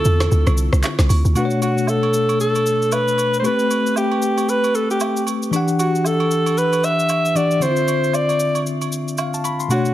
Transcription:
Already playing: D3 C4 E4 F4 A4
0.05 E2, shaker
0.20 cross-stick, snare, high agogo, shaker
0.31 D2, shaker
0.46 C2, cross-stick, high agogo, shaker
0.58 shaker
0.73 C2, cross-stick, shaker
0.83 clap, high agogo, low woodblock, shaker
0.99 C2, cross-stick, snare, shaker
1.09 D2, open hi-hat, high agogo, shaker
1.25 D2, shaker
1.34 B2 A3 D4 F#4, high agogo, shaker
1.39 B4
1.45 C#5
1.50 shaker
1.62 F#4, high agogo, shaker
1.78 shaker
1.87 A4, low woodblock, shaker
2.03 high agogo
2.14 shaker
2.29 high agogo, shaker
2.40 A4, shaker
2.55 high agogo, shaker
2.66 shaker
2.82 shaker
2.92 B4, high agogo, low woodblock, shaker
3.08 shaker
3.18 high agogo, shaker
3.34 shaker
3.39 A3 C5
3.44 C4 G4 B4, high agogo, shaker
3.59 shaker
3.71 high agogo, shaker
3.86 shaker
3.96 G4, low woodblock, shaker
4.12 high agogo
4.22 shaker
4.38 high agogo, shaker
4.49 B4, shaker
4.64 high agogo, shaker
4.75 A4, shaker
4.91 G4, shaker
5.00 high agogo, low woodblock, shaker
5.17 shaker
5.27 high agogo, shaker
5.43 shaker
5.51 E3 D4 G4, high agogo, shaker
5.56 F#5
5.68 shaker
5.79 F#4, high agogo, shaker
5.95 shaker
6.05 A4, low woodblock, shaker
6.20 high agogo
6.31 shaker
6.46 high agogo, shaker
6.58 B4, shaker
6.73 high agogo, shaker
6.84 E5, shaker
6.99 shaker
7.09 high agogo, low woodblock, shaker
7.25 shaker
7.35 E3 D4 G4 D5 F#5, high agogo, shaker
7.51 shaker
7.60 D3 C4 E4 C5, high agogo, shaker
7.65 E5
7.70 F4
7.76 shaker
7.88 high agogo, shaker
8.04 shaker
8.13 D5, low woodblock, shaker
8.29 high agogo, shaker
8.40 shaker
8.55 high agogo, shaker
8.66 shaker
8.81 high agogo, shaker
8.92 shaker
9.08 shaker
9.18 F5, high agogo, low woodblock, shaker
9.34 A5, shaker
9.44 B5, high agogo, shaker
9.60 C6, shaker
9.68 B2 A3 D4 F#4, high agogo, shaker
9.74 C#5
9.85 shaker

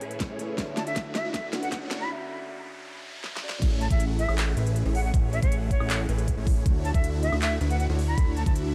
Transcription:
Already playing: A2 E3 A3 E4 G#4 C#5 E5 F#5, riser
0.01 A3 C#4 E4 G#4 B4, closed hi-hat
0.11 closed hi-hat
0.20 kick, snare, closed hi-hat
0.30 A3 C#4 E4 G#4 C#5
0.38 A3 E4 G#4 B4, closed hi-hat
0.56 D2 D3 A3 D4 E4 F#4 C#5 E5, kick, snare, closed hi-hat
0.60 E5
0.77 A5, snare, closed hi-hat
0.87 A3 D4 E4 F#4 E5, closed hi-hat
0.96 kick, snare, closed hi-hat
1.15 E5, snare, closed hi-hat
1.25 A3 D4 E4 F#4 E5
1.34 E5, kick, snare, closed hi-hat
1.52 D3 A3 C#4 D4 E4 F#4 B4 F#5, snare, closed hi-hat
1.63 F#5, closed hi-hat
1.72 F#5, kick, snare, closed hi-hat
1.81 A3 D4 E4 F#4 C#5
1.91 snare, closed hi-hat
2.01 B5
2.08 D3 C#4 F#4
2.12 E5
3.24 snare
3.37 snare
3.42 D3 C#4 F#4 D5
3.49 snare
3.62 A1 A3 C#4 E4 G#4 C#5, kick, closed hi-hat, crash
3.81 A5, closed hi-hat
3.91 A1 A3 C#4 E4 G#4 E5 F#5, kick, closed hi-hat
4.00 closed hi-hat
4.19 E5, closed hi-hat
4.29 A1 A3 C#4 E4 G#4 F#5, high woodblock
4.38 clap, closed hi-hat
4.57 A1 A3 C#4 E4 G#4 B4, closed hi-hat
4.67 closed hi-hat
4.76 closed hi-hat
4.85 A1 A3 C#4 E4 G#4 C#5
4.95 F#5, open hi-hat
5.05 F#5
5.14 A1 A3 C#4 E4 G#4 C#5, kick, closed hi-hat
5.33 E5, closed hi-hat
5.42 A1 A3 C#4 G#4 C#5 F#5, kick, closed hi-hat
5.52 closed hi-hat
5.71 C#5, kick, closed hi-hat
5.80 A1 A3 C#4 E4 G#4 F#5, high woodblock
5.90 clap, closed hi-hat
6.09 A1 A3 C#4 E4 G#4 B4, closed hi-hat
6.18 closed hi-hat
6.28 kick, closed hi-hat
6.37 A1 A3 C#4 E4 G#4 C#5
6.47 kick, open hi-hat
6.66 D2 A3 D4 E4 F#4 C#5, kick, closed hi-hat
6.85 A5, closed hi-hat
6.94 D2 A3 E4 F#4 E5, kick, closed hi-hat
7.04 closed hi-hat
7.22 E5, closed hi-hat
7.32 D2 A3 D4 E4 F#4 E5, high woodblock
7.42 E5, clap, closed hi-hat
7.61 D2 A3 D4 E4 F#4 B4, closed hi-hat
7.70 F#5, closed hi-hat
7.79 F#5, closed hi-hat
7.89 D2 A3 D4 E4 F#4 C#5
7.99 open hi-hat
8.08 B5
8.18 D2 A3 D4 E4 F#4, kick, closed hi-hat
8.36 A5, closed hi-hat
8.46 D2 A3 E4 F#4 E5 A5, kick, closed hi-hat
8.56 closed hi-hat

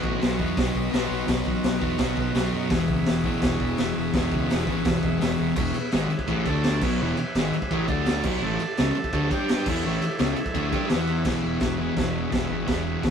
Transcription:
Already playing: B2 F#3 B3 F#4 B4 D#5
0.03 A1, kick
0.21 B1, snare, open hi-hat
0.38 E2 B2 F#3 B3, kick
0.57 B1, kick, snare, open hi-hat
0.75 B1, kick
0.91 B1 B2 F#3, snare, open hi-hat
0.95 B3
1.10 B1
1.27 B1 B2 F#3 B3, kick, snare, open hi-hat
1.46 A1, kick
1.63 B1, snare, open hi-hat
1.80 E2 B2 F#3 B3, kick
1.98 B1, kick, snare, open hi-hat
2.17 B1, kick
2.34 B1 B2 F#3 B3, snare, open hi-hat
2.53 F#2
2.70 E1 E2 B2 E3 G#4 B4 E5, kick, snare, open hi-hat
2.88 C#2, kick
3.05 E1, snare, open hi-hat
3.24 A1 B2 E3, kick
3.28 E2
3.42 E1, kick, snare, open hi-hat
3.60 E1, kick
3.77 E1 E2 B2 E3, snare, open hi-hat
3.98 E1
4.13 E1 E2 B2, kick, snare, open hi-hat
4.18 E3
4.32 C#2, kick
4.50 E1, snare, open hi-hat
4.66 A1 E2 B2 E3, kick
4.85 E1, kick, snare, open hi-hat
5.03 E1, kick
5.19 E1 E2 B2 E3, snare, open hi-hat
5.40 E1
5.56 E1 E2 B2 E3 G#4 B4 E5, kick, crash
5.74 muted distorted electric guitar stroke, muted fingered electric bass stroke, ride
5.92 G#1 G#2 D#3 G#3, snare, ride
6.09 muted distorted electric guitar stroke, muted fingered electric bass stroke, ride
6.19 kick
6.28 A1 A2 E3 A3, kick, ride
6.44 D2 D3 A3 D4 A4 D5 A5, kick, ride
6.64 snare, ride
6.80 B1 B2 F#3 B4 E5 G#5, kick, crash
6.85 B3
7.01 E1 E2 B2 E3
7.17 muted distorted electric guitar stroke, muted fingered electric bass stroke, ride
7.35 G#1 G#2 D#3 G#3, snare, ride
7.53 muted fingered electric bass stroke, muted distorted electric guitar stroke, ride
7.62 kick
7.71 A1 A2 E3 A3, kick, ride
7.87 D2 D3 A3 D4 A4 D5 A5, kick, ride
8.06 snare, ride
8.23 B1 B2 F#3 B3, kick, crash
8.42 A1 A2 E3 A3 A4 E5 A5
8.59 muted fingered electric bass stroke, muted distorted electric guitar stroke, ride
8.77 C#2 C#3 G#3 C#4, snare, ride
8.95 muted fingered electric bass stroke, muted distorted electric guitar stroke, ride
9.04 kick
9.13 D2 D3 A3 D4, kick, ride
9.31 G2 G3 D4 G4 D5 G5, kick, ride
9.49 snare, ride
9.66 E2 E3 B3 E4 A4 E5, kick, crash
9.70 E4
9.85 A1 A2 E3 A3
10.02 muted distorted electric guitar stroke, muted fingered electric bass stroke, ride
10.19 C#2 C#3 G#3 C#4, snare, ride
10.36 muted distorted electric guitar stroke, muted fingered electric bass stroke, ride
10.46 kick
10.54 D2 D3 A3 D4, kick, ride
10.71 G2 G3 D4 G4, kick, ride
10.89 E2 E3 B3 E4 B4 E5, snare, ride
11.07 ride
11.25 E1 E2 B2 E3 G#4 B4 E5, kick, snare, crash
11.45 E1
11.60 E1 E2 B2 E3, kick, snare, crash
11.78 B2 E3
11.95 E1 E2 B2 E3, kick, snare, crash
12.31 E1 E2 B2 E3, kick, snare, crash
12.50 G#1 B2 E3
12.67 E1 E2 B2 E3, kick, snare, crash
13.03 D2 E2 B2 E3, kick, snare, crash

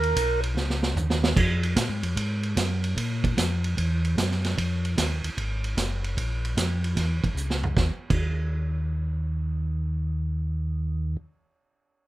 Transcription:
Already playing: D#2 A#4
0.03 ride
0.16 B1, kick, hi-hat pedal, ride
0.43 ride
0.55 C#2, snare
0.70 snare
0.83 snare
0.95 D#2, floor tom, hi-hat pedal
1.10 snare
1.23 snare
1.36 F2, kick, crash
1.63 ride
1.76 A#2, kick, snare, hi-hat pedal, ride
1.89 G#2
2.03 F2, ride
2.16 G#2, kick, ride
2.43 ride
2.56 F#2, kick, snare, hi-hat pedal, ride
2.84 ride
2.97 A#2, kick, ride
3.24 kick, ride
3.37 F2, kick, snare, hi-hat pedal, ride
3.64 ride
3.77 E2, kick, ride
4.05 ride
4.17 F#2, kick, snare, hi-hat pedal, ride
4.31 snare
4.44 snare, ride
4.57 F2, kick, ride
4.85 ride
4.97 D#2, kick, snare, hi-hat pedal, ride
5.24 D#2, ride
5.37 G#1, kick, ride
5.64 ride
5.77 F#1, kick, snare, hi-hat pedal, ride
6.04 ride
6.17 A#1, kick, ride
6.45 ride
6.57 F2, kick, snare, hi-hat pedal, ride
6.84 ride
6.96 E2, kick, snare, ride
7.23 E2, kick, ride
7.35 C#2, hi-hat pedal
7.50 snare
7.63 floor tom
7.76 D#2, kick, snare
8.10 D#2, kick, crash

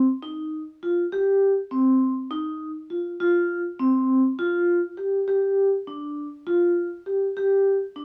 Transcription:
0.23 D#4
0.83 F4
1.12 G4
1.71 C4
2.31 D#4
2.90 F4
3.20 F4
3.79 C4
4.39 F4
4.97 G4
5.28 G4
5.87 D4
6.47 F4
7.06 G4
7.37 G4
7.96 D4

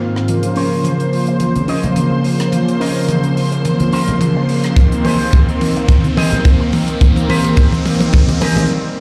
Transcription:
Already playing: G#2 D#3 A#3 C4 F4 F5
0.15 muted clean electric guitar stroke, cross-stick
0.27 C#3 F3 A#3 C5 C6, closed hi-hat, mid tom, riser
0.43 closed hi-hat
0.56 C#4 A#4 C5, open hi-hat
0.84 closed hi-hat, mid tom
1.00 closed hi-hat
1.13 open hi-hat
1.27 muted clean electric guitar stroke, closed hi-hat
1.40 muted clean electric guitar stroke, closed hi-hat, mid tom
1.56 closed hi-hat, high conga
1.68 C#3 F3 A#3 C#4 A#4 D#5, open hi-hat
1.83 closed hi-hat, low conga
1.96 closed hi-hat, mid tom
2.11 muted clean electric guitar stroke
2.24 muted clean electric guitar stroke, open hi-hat
2.40 cross-stick, closed hi-hat
2.51 C#3 F3 A#3, closed hi-hat, mid tom
2.68 closed hi-hat
2.80 C#4 A#4 D#5, open hi-hat
3.09 closed hi-hat, mid tom
3.24 closed hi-hat
3.37 open hi-hat
3.52 muted clean electric guitar stroke, closed hi-hat
3.64 muted clean electric guitar stroke, closed hi-hat, mid tom
3.80 closed hi-hat, high conga
3.92 C#3 F3 A#3 C#4 A#4 C5, open hi-hat
4.08 closed hi-hat, low conga
4.21 closed hi-hat, mid tom
4.36 muted clean electric guitar stroke
4.48 muted clean electric guitar stroke, open hi-hat
4.64 cross-stick, closed hi-hat
4.76 D#3 A#3 C4, kick, closed hi-hat, mid tom
4.92 closed hi-hat
5.05 G4 G#4 C5, open hi-hat, mid tom
5.33 kick, mid tom
5.49 closed hi-hat
5.61 open hi-hat, mid tom
5.76 muted clean electric guitar stroke, closed hi-hat
5.88 muted clean electric guitar stroke, kick, closed hi-hat, mid tom
6.04 closed hi-hat, high conga
6.16 D#3 A#3 C4 G4 G#4 D#5, open hi-hat, mid tom
6.32 closed hi-hat, low conga
6.45 kick, closed hi-hat, mid tom
6.60 muted clean electric guitar stroke
6.72 muted clean electric guitar stroke, open hi-hat, mid tom
6.88 closed hi-hat
7.00 D#3 A#3 C4, kick, closed hi-hat, mid tom
7.16 closed hi-hat, mid tom
7.29 G4 G#4 C5, open hi-hat, mid tom
7.44 closed hi-hat, mid tom
7.57 kick, closed hi-hat, mid tom
7.72 closed hi-hat, mid tom
7.86 open hi-hat, mid tom
8.00 muted clean electric guitar stroke, closed hi-hat, mid tom
8.13 muted clean electric guitar stroke, kick, closed hi-hat, mid tom, high conga
8.28 closed hi-hat, mid tom, high conga
8.41 G4 G#4 A#4, open hi-hat, mid tom
8.56 D#3 G3 A#3 C4, closed hi-hat, mid tom, low conga

